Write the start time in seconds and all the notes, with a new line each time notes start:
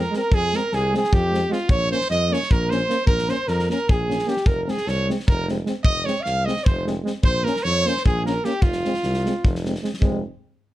0.00 A#4
0.11 G#3, snare
0.16 C4 A#4
0.31 F2 G#4, kick
0.53 G#3 C4 A#4, snare
0.72 C2 G#4, snare
0.93 G#3 C4 G#4, snare
0.98 G#4
1.04 snare
1.12 F2 G4, kick
1.31 G#3 C4, snare
1.49 G#3 C4 F4, snare
1.69 A#1 C#5, kick
1.90 A#3 C#4 C5, snare
2.01 snare
2.10 F2 D#5, snare
2.30 A#3 C#4 C#5, snare
2.42 snare
2.51 A#1 A#4, kick
2.69 A#3 C#4 C5, snare
2.89 A#3 C#4, snare
3.06 A#1 A#4, kick
3.18 snare
3.28 A#3 C#4 C5, snare
3.48 F2 A#4, snare
3.59 snare
3.69 A#3 C#4 A#4, snare
3.88 A#1 G#4, kick
4.08 A#3 C#4, snare
4.19 snare
4.25 A#3 C#4 G4, snare
4.37 snare
4.45 F1 A#4, kick
4.63 G#3 A#4
4.68 C4 G#4, snare
4.77 snare
4.87 C2 C#5, snare
5.09 G#3 C4, snare
5.20 snare
5.28 F1 A#4, kick
5.49 G#3 C4, snare
5.65 G#3 C4, snare
5.84 F1 D#5, kick
6.05 G#3 C4 C#5, snare
6.21 F5
6.25 C2, snare
6.45 G#3 C4 D#5, snare
6.57 snare
6.64 F1 C5, kick
6.86 G#3 C4, snare
7.04 G#3 C4, snare
7.23 A#1 C5, kick
7.43 A#3 C#4 A#4, snare
7.56 snare
7.63 F2 C#5, snare
7.85 A#3 C#4 C5, snare
7.97 snare
8.05 A#1 G#4, kick
8.24 A#3 C#4 A#4, snare
8.44 A#3 C#4 G4, snare
8.62 F1 F4, kick
8.73 snare
8.85 G#3 C4, snare
8.94 snare
9.03 C2, snare
9.13 snare
9.25 G#3 C4, snare
9.45 F1, kick
9.55 snare
9.65 G#3 C4, snare
9.75 snare
9.82 G#3 C4, snare
9.94 snare
10.01 F1 G#3 C4, kick